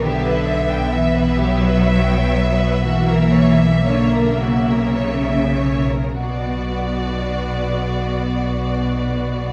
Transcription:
<<
  \new Staff \with { instrumentName = "Violin section" } { \time 6/8 \key b \minor \tempo 4. = 36 e''2.~ | e''2~ e''8. r16 | d''2. | }
  \new Staff \with { instrumentName = "Violin section" } { \time 6/8 \key b \minor g'16 b'16 e''16 g''16 e''16 b'16 g'16 b'16 e''16 g''16 e''16 b'16 | fis'16 ais'16 cis''16 e''16 cis''16 ais'16 fis'16 ais'16 cis''16 e''16 cis''16 ais'16 | fis'2. | }
  \new Staff \with { instrumentName = "Viola section" } { \time 6/8 \key b \minor b2. | ais2~ ais8. r16 | b2. | }
  \new Staff \with { instrumentName = "Cello section" } { \clef bass \time 6/8 \key b \minor d4 e8 fis4. | e4 d8 cis4. | b,2. | }
  \new Staff \with { instrumentName = "Double bass section" } { \clef bass \time 6/8 \key b \minor b,,2.~ | b,,2~ b,,8. r16 | b,,2. | }
>>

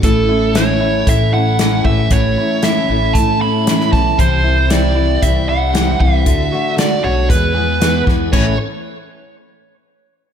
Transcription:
<<
  \new Staff \with { instrumentName = "Lead electric guitar" } { \time 4/4 \key a \major \tempo 4 = 116 a'4 cis''4 e''8 fis''4 e''8 | cis''4 e''4 a''8 b''4 a''8 | c''4 d''4 e''8 fis''4 e''8~ | e''4 d''8 cis''8 b'4. r8 |
cis''8 r2. r8 | }
  \new Staff \with { instrumentName = "Tonewheel organ" } { \time 4/4 \key a \major <cis' e' a'>1~ | <cis' e' a'>1 | <c' e' g'>1 | <d' fis' a'>2 <b e' gis'>2 |
<cis' e' a'>8 r2. r8 | }
  \new Staff \with { instrumentName = "Clean electric guitar" } { \time 4/4 \key a \major a,8 e'8 cis'8 e'8 a8 e'8 cis'8 e8 | a,8 e'8 cis'8 e'8 a8 e'8 cis'8 e8 | c8 e'8 c'8 e'8 g8 e'8 c'8 e8 | d8 fis'8 d'8 fis'8 e,8 gis'8 b8 e8 |
<a, e a cis' e'>8 r2. r8 | }
  \new Staff \with { instrumentName = "Steel-string acoustic guitar" } { \time 4/4 \key a \major <a, e a cis' e'>8 <a cis' e'>8 <a, e a cis' e'>8 <a cis' e'>8 <e a cis' e'>8 <a cis' e'>8 <a, e a cis' e'>8 <a cis' e'>8 | <a, e a cis' e'>8 <a cis' e'>8 <a, e a cis' e'>8 <a cis' e'>8 <e a cis' e'>8 <a cis' e'>8 <a, e a cis' e'>8 <a cis' e'>8 | <c e g c' e'>8 <g c' e'>8 <c e g c' e'>8 <g c' e'>8 <e g c' e'>8 <g c' e'>8 <c e g c' e'>8 <g c' e'>8 | <d a d' fis'>8 <a d' fis'>8 <d a d' fis'>8 <a d' fis'>8 <e gis b gis'>8 <e gis b gis'>8 <e, b, e gis b gis'>8 <e gis b gis'>8 |
<a, e a cis' a'>8 r2. r8 | }
  \new Staff \with { instrumentName = "Upright bass" } { \clef bass \time 4/4 \key a \major a,,2 a,,4. a,,8 | a,,8 r4 a,,8 a,4. b,,8 | c,2 c,4. c,8 | d,8 r4 b,,8 e,4. e,8 |
a,,8 r2. r8 | }
  \new DrumStaff \with { instrumentName = "Drums" } \drummode { \time 4/4 <hh bd>4 <hh sn>4 <hh bd>4 <hh sn>8 bd8 | <hh bd>4 <hh sn>4 <hh bd>4 <hh sn>16 sn16 <bd sn>8 | <hh bd>4 <hh sn>4 <hh bd>4 <hh sn>8 bd8 | <hh bd>4 <hh sn>4 <hh bd>4 <hh sn>8 <bd sn>8 |
<cymc bd>4 r4 r4 r4 | }
>>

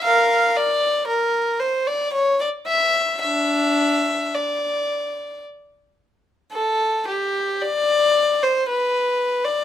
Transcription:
\new Staff \with { instrumentName = "Violin" } { \time 3/4 \key d \minor \tempo 4 = 56 <bes' f''>8 d''8 bes'8 c''16 d''16 cis''16 d''16 e''8 | <d' e''>4 d''4 r4 | \key d \dorian a'8 g'8 d''8. c''16 b'8. d''16 | }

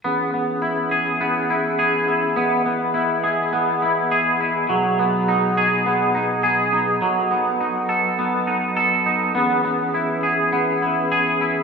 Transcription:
<<
  \new Staff \with { instrumentName = "Clean electric guitar" } { \time 4/4 \key cis \minor \tempo 4 = 103 b8 b8 e'8 gis'8 b8 e'8 gis'8 e'8 | b8 b8 e'8 gis'8 b8 e'8 gis'8 e'8 | fis8 b8 dis'8 gis'8 b8 dis'8 gis'8 dis'8 | fis8 b8 dis'8 a'8 b8 dis'8 a'8 dis'8 |
b8 b8 e'8 gis'8 b8 e'8 gis'8 e'8 | }
  \new Staff \with { instrumentName = "Tonewheel organ" } { \time 4/4 \key cis \minor << { gis'1~ | gis'1 | <b, gis'>1 | a'1 |
gis'1 | } \\ { cis'1 | dis''1~ | dis''1~ | dis''1 |
cis'1 | } >> }
  \new Staff \with { instrumentName = "Tonewheel organ" } { \clef bass \time 4/4 \key cis \minor << { b1~ | b1~ | b1~ | b1~ |
b1 | } \\ { e1~ | e1 | fis1~ | fis1 |
e1 | } >> }
>>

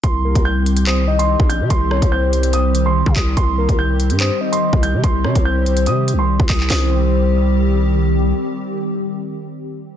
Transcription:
<<
  \new Staff \with { instrumentName = "Grand piano" } { \time 4/4 \key c \minor \tempo 4 = 144 c'''4 g'''4 ees'''8. c'''8. g'''8 | c'''4 g'''4 ees'''8. c'''8. ees'''8 | c'''4 g'''4 ees'''8. c'''8. g'''8 | c'''4 g'''4 ees'''8. c'''8. ees'''8 |
ees'''2. r4 | r1 | }
  \new Staff \with { instrumentName = "Soft synth lead" } { \time 4/4 \key c \minor r8 bes'8 r4 c''8 ees''4. | r8 des''8 c''2 r4 | r8 bes'8 r4 c''8 ees''4. | r8 des''8 c''2 r4 |
c''2. r4 | r1 | }
  \new Staff \with { instrumentName = "Analog synth pad" } { \time 4/4 \key c \minor << { <c' g'>1~ | <c' g'>1 | <c' g'>1~ | <c' g'>1 |
<ees g c' g'>1~ | <ees g c' g'>1 | } \\ { <ees g>1~ | <ees g>1~ | <ees g>1~ | <ees g>1 |
r1 | r1 | } >> }
  \new Staff \with { instrumentName = "808-style bass" } { \clef bass \time 4/4 \key c \minor c,8. c,2~ c,8 bes,,8 c16 | c,8. c,2~ c,8 c16 c,8 | c,8. c,4 g,8 r4 c,8 c16 | c,8 c16 c,4~ c,16 c8~ c32 c,8~ c,32 c,16 c,8 |
c,1 | r1 | }
  \new DrumStaff \with { instrumentName = "Drums" } \drummode { \time 4/4 <hh bd>8. <hh bd>16 r8 hh16 hh16 <hc hh>8. hh16 r16 bd16 hh8 | <hh bd>8 ss16 <hh bd>16 r8 hh16 hh16 hh8 hh8 r16 bd16 <hc hh bd>8 | <hh bd>8. <hh bd>16 r8 hh16 hh16 <hc hh>8. hh16 r16 bd16 hh8 | <hh bd>8 ss16 <hh bd>16 r8 hh16 hh16 hh8 hh8 r16 bd16 <hc hho bd>16 hc16 |
<hc sn>4 r4 r4 r4 | r4 r4 r4 r4 | }
>>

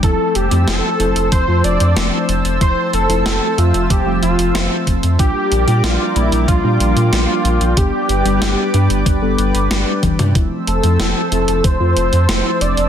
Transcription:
<<
  \new Staff \with { instrumentName = "Analog synth pad" } { \time 4/4 \key f \major \tempo 4 = 93 << { <c'' e'''>1~ | <c'' e'''>1 | <bes' d'' d'''>1 | <b' d'' d'''>1 |
<c'' e'''>1 | } \\ { a''1~ | a''1 | g''1~ | g''1 |
a''1 | } >> }
  \new Staff \with { instrumentName = "Analog synth lead" } { \time 4/4 \key f \major a'8 g'8 a'4 c''8 d''4 r8 | c''8 a'8 a'8 f'8 g'8 f'4 r8 | g'4 f'8 e'8 f'2 | g'2. r4 |
r8 a'4. c''4. d''8 | }
  \new Staff \with { instrumentName = "FM electric piano" } { \time 4/4 \key f \major <f a c' e'>8. <f a c' e'>8. <f a c' e'>8. <f a c' f'>8. <f a c' e'>4 | <f a c' e'>8. <f a c' e'>8. <f a c' e''>8. <f a c' f'>8. <f a c' e''>4 | <g bes d' f'>8. <g bes d' f'>8. <f g bes d'>8. <g bes d' g'>8. <g bes d' f'>4 | <g b d' g'>8. <g b d' g'>8. <g b d' g'>8. <g b d' a'>8. <g d' g'>4 |
<f a c' e'>8. <f a c' e'>8. <f a c' e'>8. <f a c' f'>8. <f a c' e'>4 | }
  \new Staff \with { instrumentName = "Analog synth bass" } { \clef bass \time 4/4 \key f \major f,,16 r16 f,,16 f,16 f,,16 r16 f,,16 f,,16 f,,16 f,16 f,,16 f,16 f,,16 r16 f,,16 f,,16 | f,,16 r16 f,,16 f,,16 f,,16 r16 f,16 f,,16 f,,16 f,,16 f,,16 f,,16 f,,16 r16 f,,16 f,16 | bes,,16 r16 bes,,16 bes,16 bes,,16 r16 bes,,16 bes,,16 bes,,16 bes,16 bes,,16 bes,16 bes,,16 r16 bes,,16 bes,,16 | g,,16 r16 g,,16 g,,16 g,,16 r16 g,16 g,,16 g,,16 g,,16 g,,16 g,,16 g,,16 r16 g,,16 g,16 |
f,,16 r16 f,,16 f,16 f,,16 r16 f,,16 f,,16 f,,16 f,16 f,,16 f,16 f,,16 r16 f,,16 f,,16 | }
  \new DrumStaff \with { instrumentName = "Drums" } \drummode { \time 4/4 <hh bd>8 hh16 hh16 <hh sn>8 hh16 hh16 <hh bd>8 hh16 hh16 <hh sn>8 hh16 hh16 | <hh bd>8 hh16 hh16 <hh sn>8 hh16 hh16 <hh bd>8 hh16 hh16 <hh sn>8 <hh bd>16 hh16 | <hh bd>8 hh16 hh16 <hh sn>8 hh16 hh16 <hh bd>8 hh16 hh16 <hh sn>8 hh16 hh16 | <hh bd>8 hh16 hh16 <hh sn>8 hh16 hh16 <hh bd>8 hh16 hh16 <hh sn>8 <hh bd tommh>16 <hh toml>16 |
<hh bd>8 hh16 hh16 <hh sn>8 hh16 hh16 <hh bd>8 hh16 hh16 <hh sn>8 hh16 hh16 | }
>>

